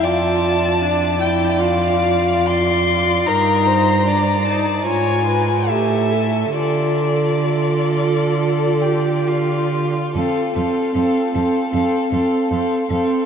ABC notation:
X:1
M:4/4
L:1/16
Q:1/4=75
K:Dm
V:1 name="Violin"
a6 g2 f4 c'4 | b6 a2 ^g4 e4 | d12- d2 z2 | [K:F] f2 f2 f2 f2 f2 f2 f2 f2 |]
V:2 name="Violin"
d4 d12 | B2 c2 d4 ^c2 =B2 A4 | A4 A6 G2 F4 | [K:F] A2 A2 A2 A2 A2 A2 A2 A2 |]
V:3 name="Viola"
F4 D2 E2 F8 | _E4 D2 E2 ^E4 G2 A2 | F12- F3 z | [K:F] C2 C2 C2 C2 C2 C2 C2 C2 |]
V:4 name="Cello" clef=bass
F,,16 | G,,8 ^G,,4 A,,4 | D,12- D,3 z | [K:F] F,,2 F,,2 F,,2 F,,2 F,,2 F,,2 F,,2 F,,2 |]